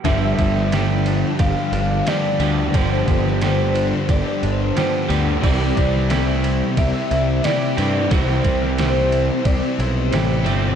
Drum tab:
CC |----------------|----------------|x---------------|----------------|
RD |x-x-x-x-x-x-x-x-|x-x-x-x-x-x-x-x-|--x-x-x-x-x-x-x-|x-x-x-x-x-x-x-x-|
SD |---oo-------o---|---oo-------o---|---oo-------o---|---oo-------o---|
BD |o-o-----o-------|o-o-----o-------|o-o-----o-------|o-o-----o-------|